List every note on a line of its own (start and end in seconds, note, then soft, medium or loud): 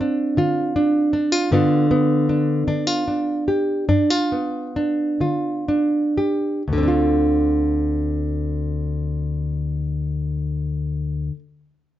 0.00 1.47 C4 soft
0.00 0.76 D4 soft
0.00 0.38 F4 medium
0.37 1.05 D3 medium
0.37 1.13 F4 medium
0.76 1.13 D4 medium
1.13 1.32 D4 medium
1.32 1.51 F4 soft
1.51 2.20 G2 medium
1.51 2.66 D3 medium
1.51 1.91 B3 soft
1.51 2.29 D4 medium
1.51 2.67 F4 medium
1.91 3.85 B3 medium
2.29 2.68 D4 soft
2.67 3.39 D3 soft
2.67 2.87 D4 medium
2.87 3.47 F4 soft
3.08 3.89 D4 soft
3.48 3.84 G4 soft
3.89 4.66 G2 medium
3.89 4.10 D4 medium
4.10 5.20 F4 soft
4.32 6.62 B3 soft
4.76 5.67 D4 soft
5.21 6.07 D3 soft
5.21 6.17 F4 soft
5.68 6.62 D4 soft
6.18 6.62 G4 soft
6.68 11.29 D2 soft
6.73 11.31 D3 soft
6.78 11.34 C4 soft
6.83 11.36 D4 soft
6.88 11.39 F4 soft